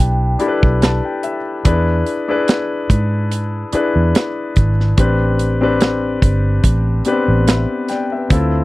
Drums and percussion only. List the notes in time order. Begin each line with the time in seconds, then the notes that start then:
0.40 closed hi-hat
0.63 kick
0.82 snare, closed hi-hat
1.23 closed hi-hat
1.65 kick, closed hi-hat
2.06 closed hi-hat
2.48 snare, closed hi-hat
2.90 kick, closed hi-hat
3.32 closed hi-hat
3.72 closed hi-hat
4.15 snare, closed hi-hat
4.56 kick, closed hi-hat
4.80 snare
4.98 kick, closed hi-hat
5.39 closed hi-hat
5.81 snare, closed hi-hat
6.22 kick, closed hi-hat
6.64 kick, closed hi-hat
7.05 closed hi-hat
7.48 snare, closed hi-hat
7.88 snare, closed hi-hat
8.30 kick, closed hi-hat